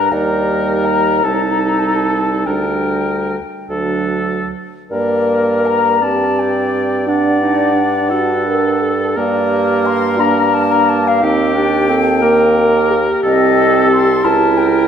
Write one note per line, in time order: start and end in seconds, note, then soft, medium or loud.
0.00 0.13 D4 medium
0.00 0.10 A#4 soft
0.00 0.13 A#5 medium
0.11 1.24 D#2 soft
0.11 1.22 G3 soft
0.11 1.23 D#4 soft
0.11 1.25 A#4 soft
0.11 0.86 D5 medium
0.84 1.26 A#5 medium
1.23 2.46 C2 soft
1.23 2.44 G3 soft
1.23 2.48 D#4 soft
1.23 2.46 A4 soft
1.23 1.35 A5 soft
1.33 1.43 A#5 soft
1.42 1.52 A5 soft
1.51 1.61 A#5 soft
1.59 1.70 A5 soft
1.68 1.79 A#5 soft
1.78 1.88 A5 soft
1.87 1.97 A#5 soft
1.95 2.47 A5 medium
2.45 3.37 D2 soft
2.45 3.37 G3 soft
2.45 3.39 D4 soft
2.45 3.37 A#4 soft
2.45 3.70 G5 medium
3.69 4.52 D2 soft
3.69 4.53 F#3 soft
3.69 4.53 D4 soft
3.69 4.52 A4 soft
4.90 9.14 G2 soft
4.90 6.02 A#3 soft
4.90 5.97 A#4 medium
4.90 5.98 A#4 soft
4.90 5.67 D5 medium
5.65 6.04 A#5 medium
6.01 7.06 C4 soft
6.01 7.09 G4 medium
6.01 7.06 D5 soft
6.01 6.40 A5 medium
6.39 7.09 G5 medium
7.07 7.40 D4 soft
7.07 8.13 D4 medium
7.07 8.11 D5 soft
7.07 8.83 F#5 medium
7.41 7.76 D#4 soft
7.75 8.11 D4 soft
8.09 9.18 D4 medium
8.09 8.46 F#4 medium
8.09 9.18 A4 soft
8.47 8.83 A#4 medium
8.81 9.17 A4 medium
9.16 11.18 G2 medium
9.16 10.17 A#3 medium
9.16 10.20 G4 medium
9.16 11.21 A#4 medium
9.16 9.87 D5 medium
9.85 10.21 C6 medium
10.17 11.24 A#3 medium
10.17 11.04 D4 medium
10.17 10.55 A#5 medium
10.53 10.73 A5 medium
10.71 10.90 A#5 medium
10.88 11.08 A5 medium
11.07 11.25 F5 medium
11.21 13.08 D#2 medium
11.21 11.57 C4 medium
11.21 11.54 D#4 medium
11.21 11.95 G4 medium
11.21 12.91 G5 medium
11.54 11.90 D4 medium
11.54 11.91 G4 medium
11.89 12.24 C4 medium
11.89 12.25 A4 medium
12.22 13.07 A#3 medium
12.22 13.19 A#4 medium
12.22 12.57 A#4 medium
12.58 12.92 A#4 medium
12.91 14.88 G4 medium
13.23 14.20 C2 medium
13.23 14.20 C4 medium
13.23 14.25 A4 medium
13.23 13.87 D#5 medium
13.92 14.26 C6 medium
14.24 14.88 C#2 medium
14.24 14.88 E4 medium
14.24 14.88 A#4 medium
14.24 14.59 A5 medium
14.57 14.88 G5 medium